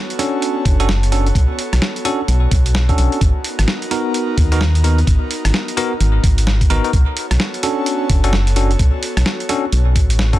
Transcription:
Already playing: analog synth pad B3 F#4 A4 C#5
0.10 closed hi-hat
0.19 tine electric piano C#4 D4 F#4 A4, cross-stick, open hi-hat
0.42 closed hi-hat
0.65 fm bass F#1, kick, open hi-hat
0.80 tine electric piano C#4 D4 F#4 A4, closed hi-hat
0.89 snare
1.03 closed hi-hat
1.12 tine electric piano C#4 D4 F#4 A4, open hi-hat
1.26 closed hi-hat
1.35 fm bass B1, kick, closed hi-hat
1.59 open hi-hat
1.73 fm bass B1, cross-stick, closed hi-hat
1.82 snare
1.96 closed hi-hat
2.05 tine electric piano C#4 D4 F#4 A4, open hi-hat
2.28 fm bass B1, closed hi-hat
2.51 fm bass B1, kick, open hi-hat
2.66 closed hi-hat
2.75 snare
2.89 tine electric piano C#4 D4 F#4 A4, kick, closed hi-hat
2.98 fm bass B1, open hi-hat
3.12 closed hi-hat
3.21 fm bass G#1, analog synth pad B3 D#4 A#4, kick, closed hi-hat
3.44 open hi-hat
3.59 fm bass G#1, cross-stick, closed hi-hat
3.68 snare
3.82 closed hi-hat
3.91 tine electric piano B3 D#4 F#4 A#4, cross-stick, open hi-hat
4.14 closed hi-hat
4.37 fm bass D#2, kick, open hi-hat
4.52 tine electric piano B3 D#4 F#4 A#4, closed hi-hat
4.61 snare
4.75 closed hi-hat
4.84 tine electric piano B3 D#4 F#4 A#4, open hi-hat
4.98 closed hi-hat
5.07 fm bass G#1, kick, closed hi-hat
5.31 open hi-hat
5.45 fm bass G#1, cross-stick, closed hi-hat
5.54 snare
5.68 closed hi-hat
5.77 tine electric piano B3 D#4 F#4 A#4, open hi-hat
6.00 fm bass G#1, closed hi-hat
6.24 fm bass G#1, kick, open hi-hat
6.38 closed hi-hat
6.47 snare
6.61 kick, closed hi-hat
6.70 fm bass G#1, tine electric piano B3 D#4 F#4 A#4, open hi-hat
6.84 tine electric piano B3 D#4 F#4 A#4, closed hi-hat
6.93 fm bass B1, analog synth pad B3 F#4 A4 C#5, kick, closed hi-hat
7.17 open hi-hat
7.31 fm bass B1, cross-stick, closed hi-hat
7.40 snare
7.54 closed hi-hat
7.63 tine electric piano C#4 D4 F#4 A4, open hi-hat
7.86 closed hi-hat
8.10 fm bass F#1, kick, open hi-hat
8.24 tine electric piano C#4 D4 F#4 A4, closed hi-hat
8.33 snare
8.47 closed hi-hat
8.56 tine electric piano C#4 D4 F#4 A4, open hi-hat
8.71 closed hi-hat
8.79 fm bass B1, kick, closed hi-hat
9.03 open hi-hat
9.17 fm bass B1, cross-stick, closed hi-hat
9.26 snare
9.40 closed hi-hat
9.49 tine electric piano C#4 D4 F#4 A4, cross-stick, open hi-hat
9.72 fm bass B1, closed hi-hat
9.96 fm bass A1, kick, open hi-hat
10.10 closed hi-hat
10.19 snare
10.33 tine electric piano C#4 D4 F#4 A4, kick, closed hi-hat

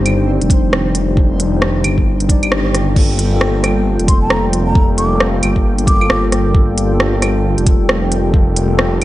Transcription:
Already playing: detuned saw bass G1, analog synth pad D#3 C4 G4 D5 G5, tine electric piano G3 D4 D#4 C5 D5, synth texture C4 C5
0.06 closed hi-hat, claves
0.42 detuned saw bass F1, closed hi-hat
0.46 tine electric piano G3 D4, kick
0.50 tine electric piano D#4 C5, closed hi-hat
0.73 cross-stick
0.95 closed hi-hat
1.15 tine electric piano G3 D4 D#4, kick
1.19 tine electric piano C5
1.40 closed hi-hat
1.49 tine electric piano G3 D4
1.55 tine electric piano D#4 C5
1.62 cross-stick
1.84 detuned saw bass G1, closed hi-hat, claves
1.98 kick
2.20 closed hi-hat
2.27 tine electric piano G3 D4 D#4 D5, kick, closed hi-hat
2.43 closed hi-hat, claves
2.52 detuned saw bass G1, cross-stick
2.75 cross-stick, closed hi-hat
2.95 detuned saw bass G1, tine electric piano G3 A#3 F4 A4, analog synth pad A#3, kick, crash
3.09 analog synth pad F4
3.17 analog synth pad A4, closed hi-hat
3.29 tine electric piano G3 A#3
3.34 tine electric piano F4 A4
3.41 cross-stick
3.64 cross-stick, closed hi-hat, claves
4.00 detuned saw bass F1, closed hi-hat
4.04 tine electric piano G3 A#3, flute C6, kick, closed hi-hat
4.10 tine electric piano F4 A4
4.21 flute A#5
4.30 cross-stick
4.53 closed hi-hat
4.67 flute A#5
4.74 tine electric piano G3 A#3 F4 A4, kick
4.97 flute D6, closed hi-hat
5.08 tine electric piano G3 A#3
5.13 tine electric piano F4 A4
5.20 cross-stick
5.43 detuned saw bass G1, closed hi-hat, claves
5.56 kick
5.78 closed hi-hat
5.87 flute D6, kick, closed hi-hat
5.97 tine electric piano G3 A#3, claves
6.03 tine electric piano F4 A4
6.10 detuned saw bass G1, cross-stick
6.32 cross-stick, closed hi-hat
6.52 detuned saw bass G1, tine electric piano G3 A#3 F4, kick
6.56 tine electric piano A4
6.78 analog synth pad G4, closed hi-hat
6.86 tine electric piano G3 A#3
6.91 tine electric piano F4 A4
7.00 cross-stick
7.22 cross-stick, closed hi-hat, claves
7.58 detuned saw bass F1, closed hi-hat
7.63 tine electric piano G3 A#3, kick, closed hi-hat
7.68 tine electric piano F4 A4
7.89 cross-stick
8.12 closed hi-hat
8.31 tine electric piano G3 A#3 F4, kick
8.35 tine electric piano A4
8.56 closed hi-hat
8.66 tine electric piano G3 A#3
8.71 tine electric piano F4 A4
8.79 cross-stick

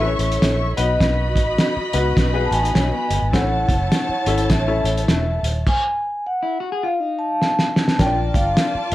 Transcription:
Already playing: fingered electric bass A1, string section A4 E5 C#6
0.01 upright piano C#4 E4 A4 B4
0.07 upright piano C#5
0.19 fingered electric bass A1, vibraphone C#5, closed hi-hat
0.32 closed hi-hat
0.42 fingered electric bass A#1, snare, closed hi-hat
0.77 fingered electric bass B1, upright piano B3 D#4 F#4 B4, string section F#4 D#5 B5, vibraphone D#5, closed hi-hat
1.00 fingered electric bass B1, kick, snare, closed hi-hat
1.36 fingered electric bass A1, kick, closed hi-hat
1.58 snare, closed hi-hat
1.77 muted fingered electric bass stroke
1.93 fingered electric bass C#2, upright piano B3 D#4 F#4 B4, closed hi-hat
2.17 fingered electric bass B1, clean electric guitar B4, kick, snare, closed hi-hat
2.34 upright piano B3 D#4 F#4 B4, clean electric guitar G#4
2.46 vibraphone A5
2.51 fingered electric bass A1, clean electric guitar F#4, vibraphone G#5, closed hi-hat
2.63 clean electric guitar D#4, closed hi-hat
2.74 fingered electric bass B1, clean electric guitar C#4, snare, closed hi-hat
2.92 clean electric guitar B3
3.10 fingered electric bass G1, closed hi-hat
3.22 fingered electric bass G#1
3.33 fingered electric bass A1, upright piano C#4 E4 A4 C5, string section E4 C#5 A5, vibraphone F#5, kick, snare, closed hi-hat
3.40 upright piano C#5
3.69 fingered electric bass F#1, kick, closed hi-hat
3.92 snare, closed hi-hat
4.09 muted fingered electric bass stroke
4.26 fingered electric bass G#1, upright piano C#4 E4 A4 C#5, closed hi-hat
4.38 closed hi-hat
4.49 fingered electric bass A1, vibraphone E5, kick, snare, closed hi-hat
4.68 upright piano C#4 E4 A4 C#5
4.84 fingered electric bass A1, closed hi-hat
4.98 closed hi-hat
5.08 fingered electric bass E1, snare, closed hi-hat
5.43 fingered electric bass D#1, closed hi-hat
5.67 vibraphone G#5, kick, crash
6.26 vibraphone F#5
6.43 clean electric guitar E4
6.60 clean electric guitar F#4
6.72 clean electric guitar G#4
6.83 clean electric guitar F4, vibraphone F5
7.00 clean electric guitar D#4
7.19 vibraphone A5
7.42 snare
7.59 snare
7.76 snare
7.88 snare
7.99 fingered electric bass A#1, upright piano D4 F4 A#4 C#5, string section F4 D5 A5, vibraphone G5, kick, snare, closed hi-hat
8.06 upright piano D5
8.28 vibraphone G5
8.34 fingered electric bass G1, vibraphone F5, kick, closed hi-hat
8.57 snare, closed hi-hat
8.75 muted fingered electric bass stroke
8.92 closed hi-hat

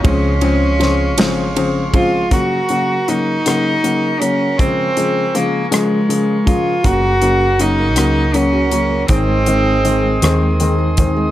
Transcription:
Already playing: steel-string acoustic guitar F4, tonewheel organ G#4 C#6
0.04 fretless electric bass C#2, grand piano C#3 F3 C4, steel-string acoustic guitar G#3, cello C#4, tonewheel organ F5 C6, kick, ride
0.41 grand piano C#3 F3 C4, steel-string acoustic guitar G#3, ride
0.79 grand piano C#3 F3 C4, steel-string acoustic guitar F4, snare, ride
1.17 fretless electric bass G#1, grand piano C#3 F3 C4, steel-string acoustic guitar G#3, snare, ride
1.55 grand piano C#3 F3 C4, steel-string acoustic guitar F4, ride
1.93 grand piano C#3 F3 C4, steel-string acoustic guitar G#3, cello F4, kick, ride
2.31 grand piano C#3 F#3 A#3, tonewheel organ F#4 A#4 A#5 C#6, cello F#4, kick, closed hi-hat
2.69 grand piano C#3 F#3 A#3, closed hi-hat
3.08 grand piano C#3 F#3 A#3, cello D#4, closed hi-hat
3.46 grand piano C#3 F#3 A#3, cross-stick, closed hi-hat
3.84 grand piano C#3 F#3 A#3, closed hi-hat
4.21 grand piano C#3 F#3 A#3, cello C#4, closed hi-hat
4.58 grand piano C#3 F3 G#3, cello C4, tonewheel organ F4 G#5 C#6, kick, closed hi-hat
4.97 grand piano C#3 F3 G#3, closed hi-hat
5.35 grand piano C#3 F3 G#3, cello A#3, cross-stick, closed hi-hat
5.71 grand piano C#3 F3 G#3, cello G#3, cross-stick, closed hi-hat
6.09 grand piano C#3 F3 G#3, closed hi-hat
6.46 grand piano C#3 F3 G#3, cello F4, kick, closed hi-hat
6.84 fretless electric bass F#1, grand piano C#3 F#3 A#3, steel-string acoustic guitar A#3 F#4, tonewheel organ F#4 A#5, cello F#4, kick, closed hi-hat
7.03 steel-string acoustic guitar A#3
7.22 grand piano C#3 F#3 A#3, steel-string acoustic guitar C#4, closed hi-hat
7.40 steel-string acoustic guitar F#4
7.59 grand piano C#3 F#3 A#3, steel-string acoustic guitar C#4, cello D#4, closed hi-hat
7.78 steel-string acoustic guitar A#3
7.96 fretless electric bass C#2, grand piano C#3 F#3 A#3, steel-string acoustic guitar A#3 F#4, cross-stick, closed hi-hat
8.16 steel-string acoustic guitar A#3
8.34 grand piano C#3 F#3 A#3, steel-string acoustic guitar C#4, cello C#4, closed hi-hat
8.53 steel-string acoustic guitar F#4
8.71 grand piano C#3 F#3 A#3, steel-string acoustic guitar C#4, closed hi-hat
8.90 steel-string acoustic guitar A#3
9.08 fretless electric bass G#1, steel-string acoustic guitar D#3 G#4, grand piano D#3 G#3 C4, cello C4, tonewheel organ G#4 D#5 C6 D#6, kick, closed hi-hat
9.28 steel-string acoustic guitar G#3
9.46 grand piano D#3 G#3 C4, steel-string acoustic guitar C4, closed hi-hat
9.66 steel-string acoustic guitar G#4
9.84 grand piano D#3 G#3 C4, steel-string acoustic guitar C4, closed hi-hat
10.03 steel-string acoustic guitar G#3
10.22 fretless electric bass D#2, steel-string acoustic guitar D#3 G#4, grand piano D#3 G#3 C4, cross-stick, closed hi-hat
10.41 steel-string acoustic guitar G#3
10.60 grand piano D#3 G#3 C4, steel-string acoustic guitar C4, closed hi-hat
10.79 steel-string acoustic guitar G#4
10.97 grand piano D#3 G#3 C4, steel-string acoustic guitar C4, kick, closed hi-hat
11.17 steel-string acoustic guitar G#3

